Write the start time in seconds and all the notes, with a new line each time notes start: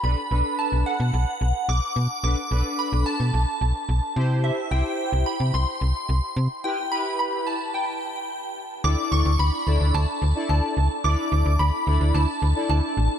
0.03 B1 D4 A4 B4 B5
0.31 B1 D4 A4 B4
0.59 A5
0.72 B1
0.86 F#5
1.00 B2
1.14 B1
1.41 B1
1.69 B1 D6
1.96 B2
2.24 B1 D4 A4 B4 D6
2.51 B1 D4 A4 B4
2.79 B5
2.92 B1
3.06 A5
3.20 B2
3.34 B1
3.61 B1
3.89 B1
4.16 C3 E4 G4 C5
4.44 E5
4.71 C2 E4 G4 C5 G5
5.13 C2
5.26 B5
5.40 C3
5.54 C2 C6
5.81 C2
6.09 C2
6.36 C3
6.64 E4 G4 B4 G5
6.92 E4 G4 B4 B5
7.19 B5
7.47 A5
7.74 G5
8.84 D2 D4 E4 A4 D5 D6
9.12 D2 C#6
9.25 D2
9.39 D2 B5
9.67 D2 D4 E4 A4 D5
9.81 D2
9.94 D2 A5
10.22 D2
10.35 D4 E4 A4 D5
10.49 D2 A5
10.77 C#2
11.04 D2 D4 E4 A4 D5 D6
11.32 D2
11.46 D2
11.59 D2 B5
11.87 D2 D4 E4 A4 D5
12.01 D2
12.14 D2 A5
12.42 D2
12.56 D4 E4 A4 D5
12.69 D2 A5
12.97 A1